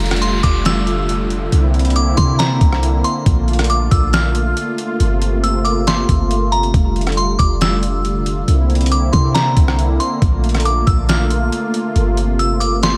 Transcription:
Already playing: 808-style bass F1, analog synth pad D3 G3 A3 F4, downlifter
0.00 closed hi-hat
0.06 closed hi-hat
0.11 cross-stick, closed hi-hat
0.16 closed hi-hat
0.22 synth bell C6, closed hi-hat
0.43 808-style bass F1, synth bell D6, kick, closed hi-hat
0.65 synth bell E6, snare, closed hi-hat
0.87 closed hi-hat
1.09 closed hi-hat
1.30 closed hi-hat
1.52 808-style bass C2, analog synth pad A#3 C4 E4, closed hi-hat
1.74 closed hi-hat
1.79 closed hi-hat
1.85 closed hi-hat
1.90 closed hi-hat
1.96 synth bell D6, closed hi-hat
2.17 808-style bass C3, synth bell C6, kick, closed hi-hat
2.39 synth bell A#5, snare, closed hi-hat
2.61 808-style bass C2, kick, closed hi-hat
2.72 cross-stick
2.83 closed hi-hat
3.04 synth bell C6, closed hi-hat
3.26 808-style bass A#1, analog synth pad A3 F4, kick, closed hi-hat
3.48 closed hi-hat
3.53 closed hi-hat
3.59 cross-stick, closed hi-hat
3.64 closed hi-hat
3.70 synth bell D6, closed hi-hat
3.91 808-style bass A#1, synth bell E6, kick, closed hi-hat
4.13 synth bell F6, snare, closed hi-hat
4.35 closed hi-hat
4.57 closed hi-hat
4.78 closed hi-hat
5.00 808-style bass G1, analog synth pad C3 A#3, closed hi-hat
5.22 closed hi-hat
5.44 synth bell E6, closed hi-hat
5.65 synth bell D6, closed hi-hat
5.87 synth bell C6, snare, closed hi-hat
6.09 808-style bass G1, kick, closed hi-hat
6.31 closed hi-hat
6.52 synth bell A#5, closed hi-hat
6.63 closed hi-hat
6.74 808-style bass F1, analog synth pad D3 G3, kick, closed hi-hat
6.96 closed hi-hat
7.01 closed hi-hat
7.07 cross-stick, closed hi-hat
7.12 closed hi-hat
7.17 synth bell C6, closed hi-hat
7.39 808-style bass F1, synth bell D6, kick, closed hi-hat
7.61 synth bell E6, snare, closed hi-hat
7.83 closed hi-hat
8.05 closed hi-hat
8.26 closed hi-hat
8.48 808-style bass C2, analog synth pad A#3 C4 E4, closed hi-hat
8.70 closed hi-hat
8.75 closed hi-hat
8.81 closed hi-hat
8.86 closed hi-hat
8.92 synth bell D6, closed hi-hat
9.13 808-style bass C3, synth bell C6, kick, closed hi-hat
9.35 synth bell A#5, snare, closed hi-hat
9.57 808-style bass C2, kick, closed hi-hat
9.68 cross-stick
9.79 closed hi-hat
10.00 synth bell C6, closed hi-hat
10.22 808-style bass A#1, analog synth pad A3 F4, kick, closed hi-hat
10.44 closed hi-hat
10.49 closed hi-hat
10.54 cross-stick, closed hi-hat
10.60 closed hi-hat
10.65 synth bell D6, closed hi-hat
10.87 808-style bass A#1, synth bell E6, kick, closed hi-hat
11.09 synth bell F6, snare, closed hi-hat
11.30 closed hi-hat
11.52 closed hi-hat
11.74 closed hi-hat
11.96 808-style bass G1, analog synth pad C3, closed hi-hat
12.17 closed hi-hat
12.39 synth bell E6, closed hi-hat
12.60 synth bell D6, closed hi-hat
12.83 synth bell C6, snare, closed hi-hat

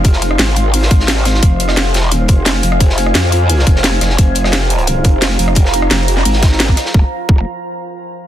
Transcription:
Already playing: wobble bass F1, ambient pad F4 C5 F5 C6
0.04 kick, closed hi-hat
0.13 snare
0.22 closed hi-hat
0.31 cross-stick
0.39 wobble bass G#1, snare, closed hi-hat
0.56 closed hi-hat
0.73 closed hi-hat, open hi-hat
0.82 snare
0.91 wobble bass G#1, kick, closed hi-hat
1.00 snare
1.08 snare, closed hi-hat
1.25 cross-stick, snare, closed hi-hat
1.34 snare
1.42 wobble bass F1, ambient pad G#5, kick, closed hi-hat
1.60 closed hi-hat
1.68 cross-stick, snare
1.77 snare, closed hi-hat
1.94 snare, closed hi-hat
2.03 wobble bass E1
2.11 closed hi-hat
2.28 wobble bass F1, kick, closed hi-hat
2.46 snare, closed hi-hat
2.63 wobble bass F1, closed hi-hat
2.72 cross-stick
2.80 kick, closed hi-hat
2.89 snare
2.98 closed hi-hat
3.06 cross-stick
3.15 wobble bass F2, snare, closed hi-hat
3.32 closed hi-hat
3.50 closed hi-hat, open hi-hat
3.59 snare
3.67 wobble bass F1, kick, closed hi-hat
3.76 snare
3.84 snare, closed hi-hat
4.01 wobble bass F1, cross-stick, snare, closed hi-hat
4.10 snare
4.18 wobble bass F1, ambient pad A#5, kick, closed hi-hat
4.35 closed hi-hat
4.44 cross-stick, snare
4.53 snare, closed hi-hat
4.70 closed hi-hat
4.78 closed hi-hat
4.87 closed hi-hat
5.04 wobble bass F1, kick, closed hi-hat
5.22 snare, closed hi-hat
5.39 wobble bass F1, closed hi-hat
5.48 cross-stick
5.55 kick, closed hi-hat
5.65 snare
5.73 closed hi-hat
5.82 cross-stick
5.91 wobble bass F1, snare, closed hi-hat
6.08 closed hi-hat
6.17 snare
6.25 wobble bass G#1, closed hi-hat, open hi-hat
6.33 snare
6.42 kick, snare, closed hi-hat
6.52 snare
6.60 snare, closed hi-hat
6.69 kick
6.77 cross-stick, snare, closed hi-hat
6.85 snare
6.94 wobble bass F1, kick
7.29 wobble bass F1, kick

